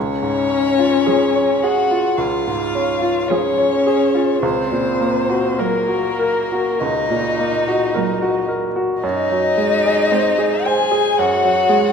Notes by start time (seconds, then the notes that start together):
Already playing: C#2 C#4 C#5
0.22 G#2
0.50 C#4
0.79 F4
1.06 F3 C#4 G#4
1.35 C#5
1.63 F#4 G#4 F#5
1.91 F4
2.17 C#2 F4 F5
2.47 G#2
2.75 C#4
3.02 F4
3.28 F3 C#4 G#4 C#5
3.58 C#5
3.87 G#4
4.15 F4
4.43 C#2 C4 C5
4.72 A#2
5.01 A#3
5.30 F#4
5.58 F#3 A#3 A#4
5.88 F#4
6.19 A#4
6.52 F#4
6.80 C#2 D#4 D#5
7.10 A#2
7.39 A#3
7.68 F#4
7.94 F#3 A#3 A#4
8.22 F#4
8.48 A#4
8.76 F#4
9.03 F#2 D#4 D#5
9.31 F#3
9.57 G#3
9.86 G#4
10.11 G#3 C4 C5
10.38 G#4
10.65 G#4 C5 G#5
10.92 G#4
11.18 F#2 F#4 F#5
11.44 F#3
11.69 G#3